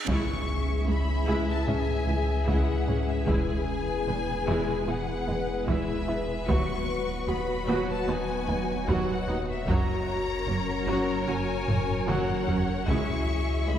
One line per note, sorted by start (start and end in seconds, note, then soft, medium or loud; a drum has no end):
0.08 0.16 C#2 medium
0.08 3.30 C#2 medium
0.08 0.32 C#3 medium
0.08 6.32 E3 medium
0.08 6.44 G#3 medium
0.08 0.45 G#3 medium
0.08 3.24 C#4 medium
0.08 6.44 E4 medium
0.08 0.45 E4 medium
0.08 3.24 G#4 medium
0.08 6.32 G#4 medium
0.08 6.44 G#4 medium
0.08 3.24 E5 medium
0.08 0.84 C#6 medium
0.08 taiko medium
0.08 impact medium
0.88 0.96 C#2 medium
0.88 0.96 C#2 soft
0.88 0.96 G#3 soft
0.88 1.12 G#3 medium
0.88 1.48 B5 medium
1.27 1.36 C#2 medium
1.27 1.52 C#3 medium
1.27 1.65 G#3 medium
1.27 1.65 E4 medium
1.49 1.68 A5 medium
1.68 1.76 C#2 soft
1.68 1.76 C#2 medium
1.68 1.76 G#3 soft
1.68 1.76 C#4 medium
1.68 1.92 C#4 medium
1.68 2.47 G#5 medium
1.68 taiko low-mid medium
2.07 2.16 C#2 medium
2.07 2.32 E3 medium
2.07 2.15 G#3 soft
2.48 2.56 C#2 medium
2.48 2.72 C#3 medium
2.48 2.85 G#3 medium
2.48 2.85 E4 medium
2.48 3.07 F#5 medium
2.48 taiko medium
2.87 2.96 C#2 soft
2.87 2.95 G#3 medium
2.87 2.95 C#4 medium
2.87 3.12 C#4 medium
2.87 taiko low-mid soft
3.10 3.29 E5 medium
3.27 3.36 E1 medium
3.27 6.50 E1 medium
3.27 3.36 E2 medium
3.27 3.52 E3 medium
3.27 3.65 G#3 medium
3.27 9.68 B3 medium
3.27 3.65 E4 medium
3.27 6.48 B4 medium
3.27 9.68 B4 medium
3.27 4.88 G#5 medium
3.27 taiko medium
4.08 4.16 E1 soft
4.08 4.16 E2 medium
4.08 4.16 G#3 soft
4.08 4.32 B3 medium
4.48 4.56 E1 medium
4.48 4.56 E2 medium
4.48 4.72 E3 medium
4.48 4.85 G#3 medium
4.48 4.85 E4 medium
4.88 4.96 E1 soft
4.88 4.96 E2 medium
4.88 4.96 G#3 medium
4.88 4.97 B3 soft
4.88 5.12 E4 medium
4.88 5.68 F#5 medium
5.28 5.36 E1 medium
5.28 5.37 E2 medium
5.28 5.52 G#3 medium
5.28 5.36 G#3 medium
5.68 5.76 E1 medium
5.68 5.76 E2 medium
5.68 5.92 E3 medium
5.68 6.05 G#3 medium
5.68 6.05 E4 medium
5.68 6.48 E5 medium
5.68 taiko medium
6.07 6.16 E1 medium
6.07 6.17 E2 soft
6.07 6.16 G#3 medium
6.07 6.15 B3 medium
6.07 6.32 E4 medium
6.48 9.69 D#1 medium
6.48 6.56 D#2 medium
6.48 6.57 D#2 medium
6.48 6.85 F#3 medium
6.48 12.72 F#3 medium
6.48 12.88 F#3 medium
6.48 6.72 B3 medium
6.48 6.85 F#4 medium
6.48 9.64 F#4 medium
6.48 12.88 F#4 medium
6.48 12.72 F#4 medium
6.48 9.68 D#5 medium
6.48 7.28 C#6 loud
6.48 taiko medium
7.28 7.36 D#2 medium
7.28 7.36 F#3 soft
7.28 7.36 B3 medium
7.28 7.52 F#4 medium
7.28 7.88 B5 medium
7.68 7.76 D#2 medium
7.68 8.05 F#3 medium
7.68 7.92 B3 medium
7.68 8.05 F#4 medium
7.89 8.08 A5 medium
8.08 8.16 D#2 medium
8.08 8.16 F#3 soft
8.08 8.16 D#4 medium
8.08 8.32 B4 medium
8.08 8.89 G#5 loud
8.48 8.56 D#2 medium
8.48 8.56 F#3 medium
8.48 8.56 B3 medium
8.48 8.72 D#4 medium
8.88 8.96 D#2 medium
8.88 9.26 F#3 medium
8.88 9.12 B3 medium
8.88 9.25 F#4 medium
8.88 9.48 F#5 medium
8.88 taiko medium
9.28 9.36 D#2 medium
9.28 9.36 F#3 medium
9.28 9.36 D#4 medium
9.28 9.52 B4 medium
9.50 9.69 E5 medium
9.68 9.76 F#1 medium
9.68 12.90 F#1 medium
9.68 9.76 F#2 medium
9.68 10.05 F#3 medium
9.68 9.92 F#3 medium
9.68 12.88 C#4 medium
9.68 10.05 F#4 medium
9.68 12.88 A#4 medium
9.68 12.84 C#5 medium
9.68 13.79 C#5 medium
9.68 11.28 A#5 loud
9.68 taiko medium
10.48 10.56 F#1 medium
10.48 10.56 F#2 medium
10.48 10.56 F#3 medium
10.48 10.56 A#3 medium
10.48 10.72 C#4 medium
10.88 10.96 F#1 medium
10.88 10.96 F#2 medium
10.88 11.25 F#3 medium
10.88 11.12 F#3 medium
10.88 11.25 F#4 medium
11.28 11.36 F#1 medium
11.28 11.37 F#2 medium
11.28 11.36 F#3 medium
11.28 11.36 C#4 medium
11.28 11.52 F#4 medium
11.28 12.08 G#5 medium
11.68 11.76 F#1 medium
11.68 11.76 F#2 medium
11.68 11.76 F#3 medium
11.68 11.76 A#3 medium
11.68 11.93 A#3 medium
11.68 taiko low-mid medium
12.08 12.16 F#1 medium
12.08 12.17 F#2 medium
12.08 12.45 F#3 medium
12.08 12.32 F#3 medium
12.08 12.45 F#4 medium
12.08 12.86 F#5 medium
12.08 taiko mid medium
12.48 12.57 F#1 medium
12.48 12.56 F#2 medium
12.48 12.56 F#3 medium
12.48 12.56 C#4 medium
12.48 12.72 F#4 medium
12.48 taiko low loud
12.88 13.79 C#2 medium
12.88 12.96 C#2 medium
12.88 12.97 C#2 medium
12.88 13.12 C#3 medium
12.88 13.79 E3 medium
12.88 13.25 G#3 medium
12.88 13.79 G#3 medium
12.88 13.25 E4 medium
12.88 13.79 E4 medium
12.88 13.79 G#4 medium
12.88 13.79 E5 medium
12.88 13.68 C#6 loud
12.88 taiko loud
13.68 13.76 C#2 medium
13.68 13.77 C#2 medium
13.68 13.76 G#3 medium
13.68 13.79 G#3 medium
13.68 13.79 B5 medium